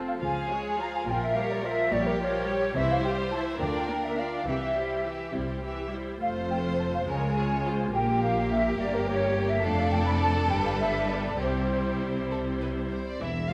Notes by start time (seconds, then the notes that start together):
Already playing: C4 F4 A4
0.07 F5
0.21 C#2 C#3 F3 F4 G#4 F5 G#5
0.50 G#3 G#4 C#5
0.77 F3 F4 F5 A#5
0.94 G#5
1.06 A#1 A#2 F3 F4 A#4 G5
1.22 E5
1.35 G3 G4 C#5 F5
1.51 D5
1.63 F3 F4 A#4 E5
1.92 A#1 A#2 G3 G4 C#5 D5
2.06 A#4
2.20 F3 F4 A#4 C#5
2.48 G3 G4 C#5
2.76 C2 C3 E3 E4 C5 E5
2.91 F5
3.04 G3 G4 C5 G5
3.32 E3 E4 E5 A5
3.60 D2 D3 D4 F4 A#4 D5 G5
3.89 A#3 D4 A#4
4.04 E5
4.18 D4 F4 D5 F5
4.47 C2 C3 E3 G4 E5
4.76 G3 E4 C5
5.05 E3 G4 E5
5.33 C2 C3 G3 E4 C5
5.63 E3 G4 E5
5.92 G3 E4 C5
6.21 F1 F2 A3 F4 C5 F5
6.51 G5
6.80 A5
6.94 F5
7.07 C#2 C#3 G#3 F4 A#4 C#5 G#5
7.37 G#4 C#5
7.66 F4 C5
7.93 A#1 A#2 A#3 G4 A#4 G5
8.22 F5
8.50 E5
8.79 G1 G2 A#3 G4 D5
8.93 A#4
9.07 C#5
9.50 E5
9.63 F1 F2 A3 D4 A4 D5 F5
9.92 G5
10.06 B5
10.21 A5
10.50 G1 G2 G3 D4 B4 G5
10.66 F5
10.79 E5
11.10 D5
11.40 C2 C3 G3 E4 G4 C5
12.31 A4
12.61 B4
12.92 C5
13.07 D5
13.21 E1 E2 E3 E4 E5
13.49 F1 F2 F3 F5